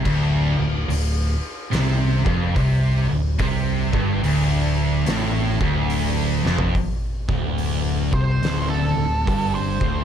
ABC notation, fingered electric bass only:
X:1
M:4/4
L:1/8
Q:"Swing" 1/4=72
K:Dm
V:1 name="Fingered electric bass" clef=bass
D,,, D,,, D,,, z C,, F,,, C,, D,,, | C,, G,,, D,,,2 A,,, D,,,2 F,,, | z D,,,2 C,, D,,, D,,, G,,, D,,, |]